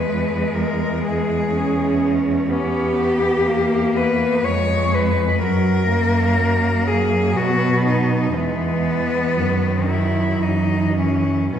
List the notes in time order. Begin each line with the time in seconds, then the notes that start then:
Already playing: E2 G#3 B4
0.05 G#3
0.55 A#4
1.06 G#4
1.54 C#4
2.50 B3 C#4 G4
2.96 B3
3.46 A#3
3.95 B3 B4
4.45 F2 G#3 C#5
4.95 B4
5.41 F#2 F#3 A#4
5.87 A#3
6.38 F#3
6.88 G#4
7.35 B2 B3 F#4
7.85 D#4
8.35 E2 E3 G#3 B3
9.36 F#2 D#3 F#3
9.89 E4
10.42 F#2 E3 D#4
10.97 C#4
11.54 B2 D#3 F#3 C#4